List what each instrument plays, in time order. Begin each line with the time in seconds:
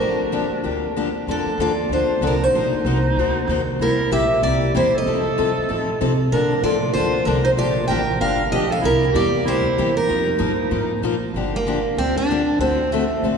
Already playing: clarinet D4, steel-string acoustic guitar A#4
0.00 upright bass G1, steel-string acoustic guitar D3 F3 A#3 D4 G4
0.32 steel-string acoustic guitar D3 F3 A#3 D4 G4
0.64 upright bass D2, steel-string acoustic guitar D3 F3 A#3 D4 G4
0.96 steel-string acoustic guitar D3 F3 A#3 D4 G4
1.27 upright bass F2, steel-string acoustic guitar D3 F3 A#3 D4 A4, clarinet D4
1.46 muted upright bass stroke
1.58 upright bass D#2, steel-string acoustic guitar D3 F3 A#3 D4 A4 D5, clarinet F4
1.89 upright bass D2, steel-string acoustic guitar D3 F3 A#3 A4 C5
1.93 steel-string acoustic guitar D4, clarinet F4
2.09 muted upright bass stroke
2.21 upright bass C2, steel-string acoustic guitar D3 F3 A#3 D4 A4, clarinet D4
2.27 steel-string acoustic guitar A#4
2.43 clarinet D#4, steel-string acoustic guitar C5
2.53 upright bass A#1, steel-string acoustic guitar A#3 D#4 F#4 C5
2.73 muted upright bass stroke
2.85 upright bass C2, steel-string acoustic guitar A#3 D#4 F#4 C5
3.17 upright bass D2, steel-string acoustic guitar A#3 D#4 F#4 C5
3.47 upright bass D#2, steel-string acoustic guitar A#3 D#4 F#4 C5
3.79 upright bass C2, steel-string acoustic guitar C3 G3 A#3 E4 G4 A#4, clarinet E4
4.11 upright bass A#1, steel-string acoustic guitar C3 G3 A#3 E4 G4 E5, clarinet G4
4.43 upright bass C2, steel-string acoustic guitar C3 G3 A#3 E4 G4 D5, clarinet G4
4.75 upright bass E2, steel-string acoustic guitar C3 G3 A#3 E4 G4 C5, clarinet E4
4.94 clarinet A4, muted upright bass stroke
4.98 steel-string acoustic guitar D#5
5.06 upright bass F2, steel-string acoustic guitar F3 C4 D#4 A4
5.27 muted upright bass stroke
5.38 upright bass G2, steel-string acoustic guitar F3 C4 D#4 A4
5.58 muted upright bass stroke
5.69 upright bass A2, steel-string acoustic guitar F3 C4 D#4 A4
6.01 upright bass C3, steel-string acoustic guitar F3 C4 D#4 A4
6.32 upright bass A#2, steel-string acoustic guitar D3 F3 A#3 D4 A4 A#4, clarinet D4
6.63 upright bass A2, steel-string acoustic guitar D3 F3 A#3 D4 A4 D5, clarinet F4
6.93 upright bass D2, steel-string acoustic guitar D3 F3 A#3 D4 A4 C5, clarinet F4
7.25 upright bass C2, steel-string acoustic guitar D3 F3 A#3 D4 A4 A#4, clarinet D4
7.44 clarinet D#4, steel-string acoustic guitar C5
7.57 upright bass A#1, steel-string acoustic guitar D3 F3 A#3 D4 G4 D5, clarinet F4
7.88 upright bass A1, steel-string acoustic guitar D3 F3 A#3 D4 G4 G5, clarinet A#4
8.20 upright bass G1, steel-string acoustic guitar D3 F3 A#3 D4 G4 F5, clarinet A#4
8.52 upright bass A#1, steel-string acoustic guitar D3 F3 A#3 D4 G4 D#5, clarinet G4
8.70 clarinet A4, steel-string acoustic guitar F5
8.81 upright bass C2, steel-string acoustic guitar C3 G3 A#3 E4 G4 A#4, clarinet E4
9.11 upright bass E2, steel-string acoustic guitar C3 A#3 E4, clarinet G4
9.16 steel-string acoustic guitar G3 G4 D5
9.45 upright bass D2, steel-string acoustic guitar C3 G3 A#3 E4 G4 C5, clarinet E4
9.78 upright bass E2, steel-string acoustic guitar C3 G3 A#3 E4 G4
9.97 clarinet D#4, steel-string acoustic guitar A#4
10.09 upright bass F2, steel-string acoustic guitar F3 A#3 D#4 F4 A#4
10.38 upright bass G2, steel-string acoustic guitar F3 A#3 D#4 F4 A#4
10.71 upright bass A2, steel-string acoustic guitar F3 A#3 D#4 F4 A#4
11.02 upright bass A#2, steel-string acoustic guitar F3 A#3 D#4 F4 A#4
11.34 upright bass G1, steel-string acoustic guitar D3 F3 A#3 D4 G4
11.56 steel-string acoustic guitar A#3
11.67 steel-string acoustic guitar D3 F3 A#3 D4 G4
11.97 upright bass D2, steel-string acoustic guitar D3 F3 A#3 C4 D4 G4
12.18 steel-string acoustic guitar D4
12.31 steel-string acoustic guitar D3 F3 A#3 D4 G4
12.59 upright bass D2, steel-string acoustic guitar D3 A3 C4 F#4 A4
12.92 steel-string acoustic guitar D3 A3 C4 F#4 A4
13.22 upright bass A1, steel-string acoustic guitar D3 A3 C4 F#4 A4